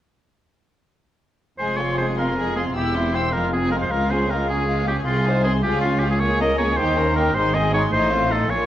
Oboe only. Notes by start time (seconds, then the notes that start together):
1.58 C5
1.77 C#5
1.98 C5
2.18 A#4
2.56 G#4
2.77 G4
3.15 C5
3.33 A#4
3.53 G#4
3.71 A#4
3.82 C5
3.91 A#4
4.11 C5
4.31 A#4
4.49 G#4
4.88 G4
5.05 F4
5.44 G#4
5.63 G4
5.81 F4
6.00 G4
6.11 G#4
6.20 C#5
6.41 D#5
6.58 C#5
6.77 C5
7.16 A#4
7.35 C5
7.54 D#5
7.74 C#5
7.92 C5
8.31 A4
8.50 C#5